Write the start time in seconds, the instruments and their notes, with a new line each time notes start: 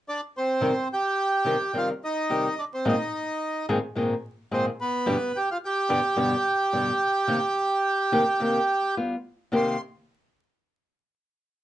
0.09 bandoneon D4 D5
0.37 bandoneon C4 C5
0.61 nylon-string guitar C3 D#3 G3 C4 G4
0.93 bandoneon G4 G5
1.44 nylon-string guitar C3 D#3 G3 C4 G4
1.73 nylon-string guitar C3 D#3 G3 C4 G4
1.77 bandoneon F4 F5
2.04 bandoneon D#4 D#5
2.30 nylon-string guitar C3 D#3 G3 C4 G4
2.59 bandoneon D4 D5
2.74 bandoneon C4 C5
2.85 nylon-string guitar G#2 A#2 D#3 G#3 C4 G#4, bandoneon D#4 D#5
3.69 nylon-string guitar G#2 A#2 D#3 G#3 C4 G#4
3.95 nylon-string guitar G#2 A#2 D#3 G#3 C4 G#4
4.51 nylon-string guitar G#2 A#2 D#3 G#3 C4 G#4, bandoneon C4 C5
4.81 bandoneon B3 B4
5.06 nylon-string guitar G2 B2 D3 G3 B3 G4
5.36 bandoneon G4 G5
5.51 bandoneon F4 F5
5.65 bandoneon G4 G5
5.89 nylon-string guitar G2 B2 D3 G3 B3 G4
6.16 nylon-string guitar G2 B2 D3 G3 B3 G4
6.73 nylon-string guitar G2 B2 D3 G3 B3 G4
7.28 nylon-string guitar C3 D#3 A#3 C4 G4
8.12 nylon-string guitar C3 D#3 A#3 C4 G4
8.40 nylon-string guitar C3 D#3 A#3 C4 G4
8.97 nylon-string guitar G3 B3 F4
9.52 nylon-string guitar C3 D#3 A#3 C4 G4
9.56 bandoneon C6